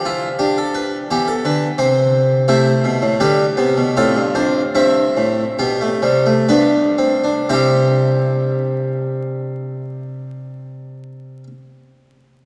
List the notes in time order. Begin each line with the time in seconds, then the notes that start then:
Already playing: F3
0.05 E4 F4
0.39 D4 G4
0.58 A4
0.74 B4
1.11 E3 B3 G4
1.27 A4
1.45 D3 B4
1.78 C3 C4 C5
2.48 C3 A3 E4 C5
2.84 B2
3.02 A2
3.20 D3 G3 G4 B4
3.57 C3 B3
3.77 B2
3.97 A2 C4 F4 A4
4.16 G2
4.35 F2 D4 C5
4.75 G2 C4 E4 E5
5.17 A2
5.59 B2 B3 G4
5.81 A3
6.02 C3 G3
6.26 A3
6.49 G2 B3 D4 B4
6.98 C4
7.24 D4
7.49 C3 G3 C4 E4 G4 C5